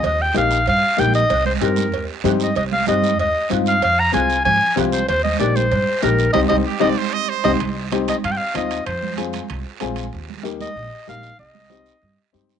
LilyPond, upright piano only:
\new Staff \with { instrumentName = "Upright piano" } { \time 4/4 \key c \minor \tempo 4 = 190 r4 <bes ees' g'>8 r4. <bes ees' g'>8 r8 | r4 <c' ees' g'>8 r4. <c' ees' g'>8 r8 | r4 <c' ees' g'>8 r4. <c' ees' f'>8 r8 | r4 <c' f' aes'>8 r4. <c' f' g'>8 r8 |
r4 <bes ees' g'>8 r4. <bes ees' g'>8 r8 | <c' ees' g'>8 <c' ees' g'>8 r8 <c' ees' g'>8 r4. <c' ees' g'>8 | r4 <c' ees' g'>8 r4. <c' ees' f'>8 r8 | r4 <c' f' aes'>8 r4. <c' f' aes'>8 r8 |
r4 <bes ees' g'>8 r4. <bes ees' g'>8 r8 | r4 <c' ees' g'>8 r4. <c' ees' g'>8 r8 | }